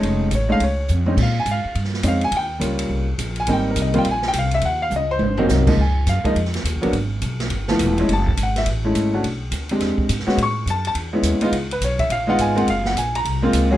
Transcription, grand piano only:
X:1
M:4/4
L:1/8
Q:"Swing" 1/4=209
K:Ab
V:1 name="Grand piano"
z2 ^c f c2 z2 | f a f2 z2 f a | g2 z4 z a | g B e g a g f _f |
_g f e c3 z2 | [K:Gblyd] a2 f e z4 | z8 | =a2 g _f z4 |
z8 | ^c'2 =a a z4 | z _c d _f =f g a g | f g a b3 z2 |]
V:2 name="Grand piano"
[A,=A,DE]2 z [^G,A,^CE] z3 [G,=C^CE] | z6 [A,CDE] z | z2 [G,B,DF]3 z3 | [G,B,CE]3 [G,B,CF] z4 |
z4 z [_G,B,CE]2 [D,,F,A,B,E] | [K:Gblyd] z3 [F,A,B,E] z3 [G,B,_C=D] | z4 z [F,=A,=B,=E]2 [_A,=A,DE] | z4 z [A,=A,D_F]2 [A,D=DG] |
z3 [A,C=D=G]3 z [^G,_C_D_G] | z4 z [^G,=B,^C=E]2 [G,B,_EF] | z4 z [A,_CEF]2 [A,B,=CF] | z4 z [A,B,CF]2 [G,A,DA] |]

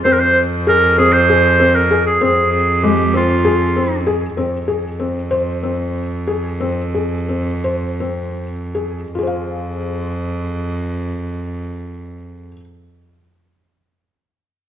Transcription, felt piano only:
X:1
M:7/8
L:1/8
Q:1/4=90
K:Fm
V:1 name="Felt piano"
C2 A C A C A | C2 A, C A C A | C A C c C2 A | C A C c C2 A |
[FAcf]6- [FAcf]- | [FAcf]6- [FAcf] |]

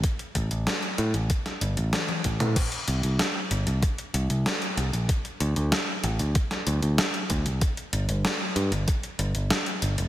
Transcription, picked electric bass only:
X:1
M:4/4
L:1/16
Q:1/4=95
K:Dm
V:1 name="Picked electric bass" clef=bass
z2 A,,, A,,, z2 A,, A,,, z2 G,,, A,,, z2 A,,, A,, | z2 C,, C,, z2 G,,, C,, z2 C,, C,, z2 C,, B,,, | z2 D,, D,, z2 A,,, D,, z2 D,, D,, z2 D,, C,, | z2 G,,, G,,, z2 G,, G,,, z2 G,,, G,,, z2 G,,, F,,, |]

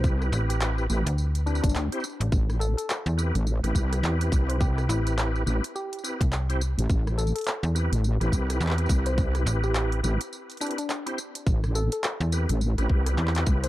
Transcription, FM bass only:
X:1
M:4/4
L:1/16
Q:"Swing 16ths" 1/4=105
K:Am
V:1 name="FM bass" clef=bass
z2 A,,,4 z D,,4 z4 A,,, | z4 z E,,2 z4 z E,,2 z2 | z2 A,,,4 z4 z C,,4 z | z4 z E,,2 z4 z E,,2 z2 |
z2 A,,,4 z8 z2 | z4 z E,,2 z4 z E,,2 z2 |]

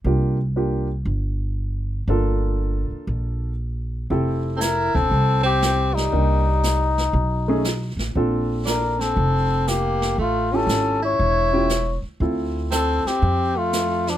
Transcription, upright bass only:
X:1
M:4/4
L:1/8
Q:"Swing" 1/4=118
K:F
V:1 name="Upright bass" clef=bass
C,,4 G,,,4 | G,,,3 z B,,,4 | F,,,3 E,,, C,,4 | C,,4 =B,,,3 A,,, |
B,,,4 F,,,4 | A,,,2 _A,,,2 E,,,3 z | D,,3 z F,,4 |]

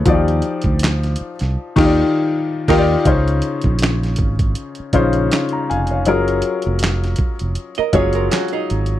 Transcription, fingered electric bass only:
X:1
M:4/4
L:1/16
Q:"Swing 16ths" 1/4=80
K:Db
V:1 name="Fingered electric bass" clef=bass
E,,2 z =D,,3 z C,, z E,,2 z3 E,,2 | D,,2 z B,,,3 A,,,2 z2 B,,,2 z2 F,,,2 | G,,,2 z F,,,3 z F,,, z2 G,,,2 z2 A,,,2 |]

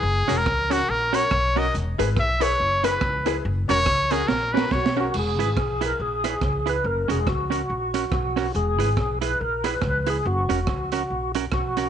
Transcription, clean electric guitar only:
X:1
M:4/4
L:1/16
Q:"Swing" 1/4=141
K:Elyd
V:1 name="Clean electric guitar"
z2 [CFA] z3 [CFA] z3 [CFA] z3 [CFA] z | z2 [EGB] z3 [EGB] z3 [EGB] z3 [EGB] z | z2 [CFA] z3 [CFA] z3 [CFA] z3 [CFA] z | z2 [EGB] z3 [EGB] z3 [EGB] z3 [EGB] z |
z2 [CFA] z3 [CFA] z3 [CFA] z3 [CFA] z | z2 [EGB] z3 [EGB] z3 [EGB] z3 [EGB] z | z2 [CFA] z3 [CFA] z3 [CFA] z3 [CFA] z |]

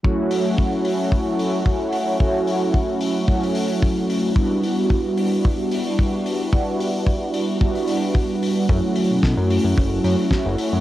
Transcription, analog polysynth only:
X:1
M:4/4
L:1/8
Q:"Swing 16ths" 1/4=111
K:F#phr
V:1 name="Analog polysynth"
[F,A,CEF]6 [F,A,CEF]2 | [F,A,CEF]4 [F,A,CEF]4 | [G,B,DEF]6 [G,B,DEF]2 | [G,B,DEF]4 [G,B,DEF]4 |
[F,A,CEF]6 [F,A,CEF]2 |]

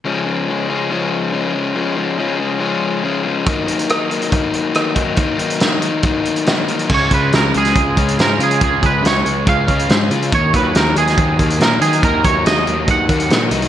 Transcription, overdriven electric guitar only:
X:1
M:4/4
L:1/8
Q:1/4=140
K:Db
V:1 name="Overdriven electric guitar" clef=bass
[D,F,A,D] [F,A,D] [D,F,A,D] [F,A,D] [D,F,A,D]2 [D,F,A,D] [F,A,D] | [D,F,A,D] [F,A,D] [D,F,A,D] [F,A,D] [D,F,A,D]2 [D,F,A,D] [F,A,D] | [E,G,B,E] [G,B,E] [E,G,B,E] [G,B,E] [E,G,B,E]2 [E,G,B,E] [G,B,E] | [E,G,B,E] [G,B,E] [E,G,B,E] [G,B,E] [E,G,B,E]2 [E,G,B,E] [G,B,E] |
D, A, D, A, D, D A, F | D, A, D, A, D, D A, F | E, G, E, G, E, B, G, E | E, G, E, G, E, B, G, E |]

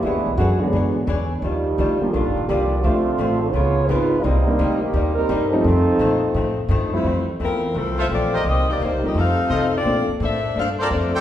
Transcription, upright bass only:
X:1
M:4/4
L:1/8
Q:"Swing" 1/4=171
K:Fmix
V:1 name="Upright bass" clef=bass
(3=E,, D,, =B,,, ^F,,2 ^G,,2 E,,2 | E,,2 D,, z (3B,,, G,,, E,,, C,,2 | D,,2 A,,,2 _D,,2 _A,,,2 | C,,2 D,,2 E,,2 G,,2 |
F,,2 B,,2 A,,2 G,,2 | [K:F] F,,2 E,,2 C,,2 B,,,2 | C,,2 (3_E,, C,, B,,, F,,2 C,2 | B,, z A,,2 G,,2 F,,2 |]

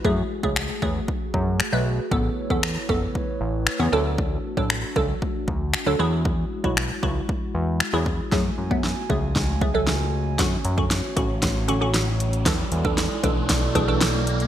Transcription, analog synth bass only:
X:1
M:4/4
L:1/16
Q:1/4=116
K:F#m
V:1 name="Analog synth bass" clef=bass
F,,2 z C,,3 E,,2 z2 F,,3 B,,,3 | A,,,2 z E,,3 F,,,2 z2 A,,,3 E,, D,,2- | D,,3 A,,,3 C,,2 z2 D,,3 D,, E,,2- | E,,3 B,,,3 C,,2 z2 E,,3 E,,3 |
F,,2 F,,4 C,,8- C,,2 | F,,2 F,,4 A,,,8- A,,,2 | E,,2 E,,4 B,,,8- B,,,2 |]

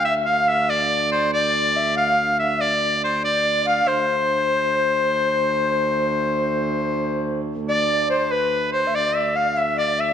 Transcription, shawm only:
X:1
M:6/8
L:1/8
Q:3/8=95
K:Ddor
V:1 name="Shawm"
e f e d2 c | d3 f2 e | d2 c d2 f | c6- |
c6- | c4- c z | d2 c B2 c | d e f e d e |]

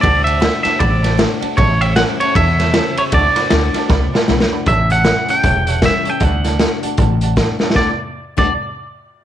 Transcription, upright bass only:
X:1
M:4/4
L:1/8
Q:"Swing" 1/4=155
K:D
V:1 name="Upright bass" clef=bass
D,,3 z A,,,3 z | A,,,3 z E,,3 z | D,, z D,, z C,, z B,,, z | A,,,3 z E,,,3 z |
D,,3 z A,,,3 z | D,, z2 D,, z4 |]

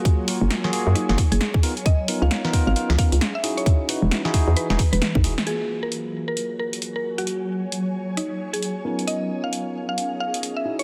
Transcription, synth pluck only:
X:1
M:4/4
L:1/16
Q:"Swing 16ths" 1/4=133
K:F#
V:1 name="Synth pluck"
F z6 z D2 z G2 z3 | d2 z e2 z2 e2 z e2 z =e z c- | c z6 z B2 z B2 z3 | G2 z A2 z2 A2 z A2 z A z F- |
F z6 z D2 z G2 z3 | d2 z e2 z2 e2 z e2 z =e z c |]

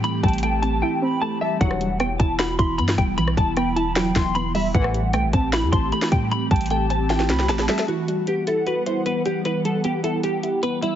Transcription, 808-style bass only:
X:1
M:4/4
L:1/16
Q:1/4=153
K:Em
V:1 name="808-style bass" clef=bass
z2 A,,,6 z8 | E,,,6 E,,,4 E,,,2 G,,2 E,,,2 | B,,,2 E,,,8 E,,,6 | A,,,4 B,,, A,,, A,,,3 E,, A,,,2 z2 A,,2 |
z2 A,,,8 C,,2 A,,,2 z2 | z16 | z16 |]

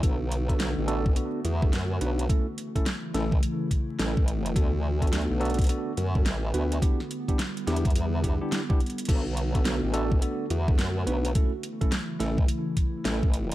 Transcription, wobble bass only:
X:1
M:4/4
L:1/16
Q:"Swing 16ths" 1/4=106
K:Bm
V:1 name="Wobble bass" clef=bass
B,,,4 B,,, A,,,3 z2 E,,2 F,,2 B,,,2 | z6 A,,,2 z4 A,,,4 | D,,4 D,, B,,,3 z2 F,,2 A,,,2 D,,2 | z6 E,,2 E,,3 z4 z |
B,,,4 B,,, A,,,3 z2 E,,2 F,,2 B,,,2 | z6 A,,,2 z4 A,,,4 |]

